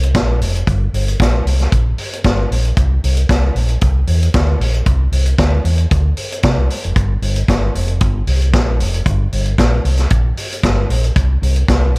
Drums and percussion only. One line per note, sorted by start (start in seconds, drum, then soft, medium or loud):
0.03 closed hi-hat medium
0.14 kick loud
0.14 snare loud
0.14 closed hi-hat medium
0.41 open hi-hat medium
0.55 closed hi-hat soft
0.67 kick loud
0.67 closed hi-hat medium
0.94 open hi-hat medium
1.08 closed hi-hat soft
1.20 kick loud
1.20 snare loud
1.20 closed hi-hat medium
1.47 open hi-hat medium
1.59 snare soft
1.59 closed hi-hat soft
1.72 kick loud
1.72 closed hi-hat medium
1.98 open hi-hat medium
2.13 closed hi-hat medium
2.24 kick loud
2.24 snare loud
2.24 closed hi-hat medium
2.52 open hi-hat medium
2.65 closed hi-hat soft
2.77 kick loud
2.77 closed hi-hat medium
3.04 open hi-hat medium
3.17 closed hi-hat medium
3.29 kick loud
3.29 snare loud
3.29 closed hi-hat medium
3.56 open hi-hat medium
3.68 closed hi-hat soft
3.81 kick loud
3.81 closed hi-hat medium
4.07 open hi-hat medium
4.23 closed hi-hat medium
4.34 kick loud
4.34 snare loud
4.34 closed hi-hat medium
4.61 open hi-hat medium
4.74 closed hi-hat soft
4.86 kick loud
4.86 closed hi-hat medium
5.12 open hi-hat medium
5.26 closed hi-hat soft
5.38 kick loud
5.38 snare loud
5.38 closed hi-hat medium
5.65 open hi-hat medium
5.78 closed hi-hat soft
5.91 kick loud
5.91 closed hi-hat medium
6.17 open hi-hat medium
6.32 closed hi-hat medium
6.43 kick loud
6.43 snare loud
6.43 closed hi-hat medium
6.70 open hi-hat medium
6.84 closed hi-hat soft
6.96 kick loud
6.96 closed hi-hat medium
7.22 open hi-hat medium
7.36 closed hi-hat medium
7.48 kick medium
7.48 snare loud
7.48 closed hi-hat medium
7.75 open hi-hat medium
7.88 closed hi-hat soft
8.01 kick loud
8.01 closed hi-hat medium
8.27 open hi-hat medium
8.42 closed hi-hat medium
8.53 kick loud
8.53 snare loud
8.53 closed hi-hat medium
8.80 open hi-hat medium
8.94 closed hi-hat soft
9.06 kick loud
9.06 closed hi-hat medium
9.32 open hi-hat medium
9.45 closed hi-hat soft
9.58 kick loud
9.58 snare loud
9.58 closed hi-hat medium
9.85 open hi-hat medium
9.97 snare soft
9.97 closed hi-hat soft
10.10 kick loud
10.10 closed hi-hat medium
10.37 open hi-hat medium
10.52 closed hi-hat medium
10.63 kick loud
10.63 snare loud
10.63 closed hi-hat medium
10.90 open hi-hat medium
11.04 closed hi-hat soft
11.16 kick loud
11.16 closed hi-hat medium
11.43 open hi-hat medium
11.56 closed hi-hat soft
11.68 kick loud
11.68 snare loud
11.68 closed hi-hat medium